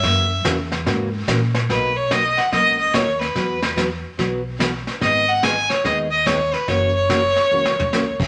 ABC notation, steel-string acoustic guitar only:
X:1
M:4/4
L:1/8
Q:"Swing" 1/4=144
K:B
V:1 name="Steel-string acoustic guitar"
[C,E,A,CF] z [C,E,A,CF] z [C,E,A,CF] z [C,E,A,CF] z | [B,,F,A,DF] z [B,,F,A,DF] z [B,,F,A,DF] z [B,,F,A,DF] z | [E,F,B,FB] z [E,F,B,FB] z [E,F,B,FB] z [E,F,B,FB] z | [D,G,B,DG] z [D,G,B,DG] z [D,G,B,DG] z [D,G,B,DG] z |
[C,E,A,CF] z [C,E,A,CF] z [C,E,A,CF] z [C,E,A,CF] z |]